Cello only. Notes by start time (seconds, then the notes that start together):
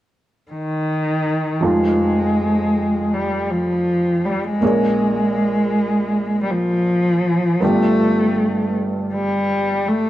0.52 D#3
1.63 G#3
3.13 G3
3.50 F3
4.25 G3
4.44 G#3
6.43 G3
6.50 F3
7.63 A3
9.14 G3
9.89 A3